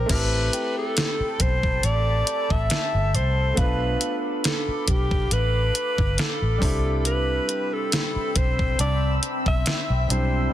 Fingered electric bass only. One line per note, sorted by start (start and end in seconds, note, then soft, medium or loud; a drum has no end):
0.10 0.48 A1 loud
1.20 muted fingered electric bass stroke soft
1.40 1.78 B1 medium
1.84 2.22 A1 loud
2.50 2.68 A1 medium
2.94 3.15 G1 loud
3.14 3.52 C2 medium
3.57 3.96 B1 loud
4.68 muted fingered electric bass stroke soft
4.88 5.26 B1 medium
5.32 5.70 A1 loud
5.98 6.16 G1 medium
6.19 muted fingered electric bass stroke soft
6.42 6.60 A1 medium
6.62 7.38 C2 medium
8.16 muted fingered electric bass stroke soft
8.36 8.74 B1 medium
8.79 9.18 C2 loud
9.46 9.64 B1 medium
9.90 10.07 B1 loud
10.10 10.48 B1 medium